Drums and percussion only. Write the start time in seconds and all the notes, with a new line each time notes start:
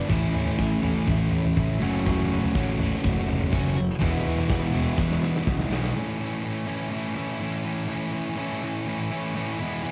0.09 kick, floor tom
0.34 floor tom
0.46 floor tom
0.59 kick
0.83 floor tom
1.07 kick, floor tom
1.31 floor tom
1.45 floor tom
1.56 kick, mid tom
2.06 kick, floor tom
2.32 floor tom
2.44 floor tom
2.55 kick
2.79 floor tom
3.04 kick, floor tom
3.28 floor tom
3.41 floor tom
3.53 kick, mid tom
4.01 kick, floor tom
4.26 floor tom
4.38 floor tom
4.50 kick, snare
4.60 floor tom
4.73 floor tom
4.98 kick, snare
5.12 snare
5.23 snare
5.36 snare
5.47 kick, snare
5.59 snare
5.73 snare
5.84 snare